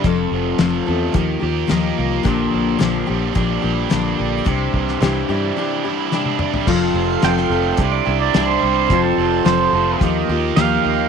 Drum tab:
CC |----------------|----------------|----------------|x---------------|
HH |x---x---x---x---|x---x---x---x---|x---x-----------|----x---x---x---|
SD |----o-------o---|----o-------o---|---oo-------o---|----oo------o---|
T1 |----------------|----------------|-------------o--|----------------|
T2 |----------------|----------------|--------------o-|----------------|
FT |----------------|----------------|---------------o|----------------|
BD |o-------o-------|o-------o-------|o-o-------------|o-------o-------|

CC |----------------|
HH |x---x---x---x---|
SD |----o-------o---|
T1 |----------------|
T2 |----------------|
FT |----------------|
BD |o-------o-------|